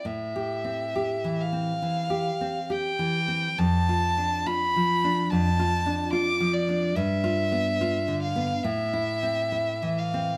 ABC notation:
X:1
M:4/4
L:1/8
Q:1/4=69
K:Am
V:1 name="Violin"
e3 f3 g2 | a2 b2 a2 d' d | e3 f e3 f |]
V:2 name="Nylon-string guitar"
(3A,, G C (3G E, C (3E, G C (3G E, C | (3F,, F D (3F F, D (3F,, F D (3F F, D | (3G,, F B, (3F D, B, (3A,, E C (3E E, C |]